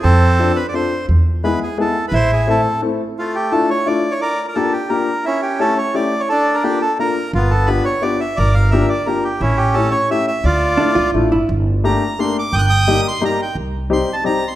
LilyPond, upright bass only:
\new Staff \with { instrumentName = "Upright bass" } { \clef bass \time 3/4 \key a \minor \tempo 4 = 173 f,2 r4 | e,2 r4 | a,,2 r4 | \key d \minor r2. |
r2. | r2. | r2. | g,,2 r4 |
g,,2 r4 | a,,2 r4 | d,4. cis,8 a,,8 g,,8 | \key g \minor g,,2 r4 |
g,,2 r4 | c,2 r4 | }